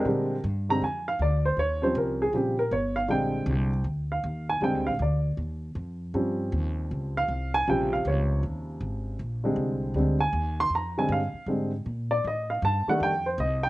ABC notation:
X:1
M:4/4
L:1/8
Q:"Swing" 1/4=158
K:Bbmix
V:1 name="Grand piano"
[DGB]2 z b a f d c | _d c B A G B d f | g4 z f2 a | g f d2 z4 |
z4 z f2 a | g f _d2 z4 | z4 z a2 c' | b a f2 z3 d |
e f =a _g =g c e g |]
V:2 name="Grand piano" clef=bass
[D,G,A,C] z2 [D,G,A,C] z4 | z [F,G,C_D]3 [_D,F,G,C] z3 | [D,G,A,C]3 z4 z | [D,G,A,C] z6 z |
[F,G,C_D]8 | [C,_D,F,G,]8 | z [D,G,A,C]3 [D,G,A,C] z3 | z [D,G,A,C] z2 [D,G,A,C] z3 |
z3 [E,G,=A,D] z4 |]
V:3 name="Upright bass" clef=bass
B,,2 G,,2 F,,2 D,,2 | E,,2 C,,2 B,,,2 G,,,2 | B,,,2 C,,2 D,,2 E,,2 | (3F,, D,, B,,, D,,2 E,,2 F,,2 |
G,,2 E,,2 _D,,2 C,,2 | B,,,2 _D,,2 E,,2 A,,,2 | B,,,2 C,,2 D,,2 E,,2 | F,,2 G,, z A,,2 B,,2 |
=A,,2 G,, z F,,2 C,,2 |]